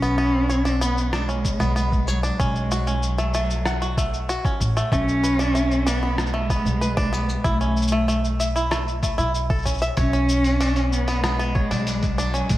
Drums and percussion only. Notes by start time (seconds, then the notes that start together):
0.03 shaker
0.50 shaker
0.66 shaker
0.82 shaker
0.98 shaker
1.13 cross-stick, shaker
1.29 shaker
1.45 kick, shaker
1.61 shaker
1.77 shaker
1.92 kick, shaker
2.08 shaker
2.24 shaker
2.40 kick, shaker
2.56 shaker
2.71 shaker
2.87 shaker
3.03 shaker
3.18 shaker
3.34 shaker
3.50 shaker
3.65 cross-stick, shaker
3.82 shaker
3.97 kick, shaker
4.14 shaker
4.29 shaker
4.45 kick, shaker
4.60 kick, shaker
4.77 shaker
4.92 kick, shaker
5.08 shaker
5.24 shaker
5.40 shaker
5.56 shaker
5.71 shaker
5.87 shaker
6.18 cross-stick, shaker
6.26 shaker
6.50 kick, shaker
6.66 shaker
6.82 shaker
6.97 kick, shaker
7.13 shaker
7.29 shaker
7.45 kick, shaker
7.61 shaker
7.77 shaker
7.82 shaker
7.88 shaker
8.09 shaker
8.24 shaker
8.40 shaker
8.56 shaker
8.72 cross-stick, shaker
8.88 shaker
9.03 kick, shaker
9.19 shaker
9.35 shaker
9.50 kick, shaker
9.54 shaker
9.58 shaker
9.63 kick, shaker
9.66 shaker
9.70 shaker
9.74 shaker
9.78 shaker
9.82 shaker
9.97 kick, open hi-hat, shaker
10.14 shaker
10.29 shaker
10.44 open hi-hat, shaker
10.60 open hi-hat, shaker
10.76 open hi-hat, shaker
10.93 shaker
11.08 open hi-hat, shaker
11.24 cross-stick, open hi-hat, shaker
11.40 shaker
11.56 kick
11.71 open hi-hat, shaker
11.87 open hi-hat, shaker
12.03 kick, open hi-hat, shaker
12.19 shaker
12.35 shaker
12.49 kick, open hi-hat, shaker